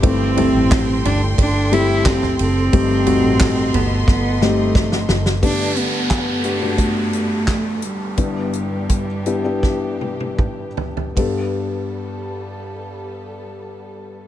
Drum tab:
RD |x-x-x-x-x-x-x-x-|x-x-x-x---------|----------------|----------------|
HH |----------------|----------------|x-x-x-x-x-x-x-x-|x-x-x-x---------|
CP |----x-------x---|----x-----------|----x-------x---|----------------|
SD |----o-------oo--|----o---o-o-oooo|----o-------o---|--------o-------|
T1 |----------------|----------------|----------------|----------oo----|
T2 |----------------|----------------|----------------|------------o---|
FT |--o---o------o--|--o---o---------|----------------|--------------oo|
BD |o---o---o---o---|o---o---o---o---|o---o---o---o---|o---o---o---o---|

RD |x---------------|
HH |----------------|
CP |----------------|
SD |----------------|
T1 |----------------|
T2 |----------------|
FT |----------------|
BD |o---------------|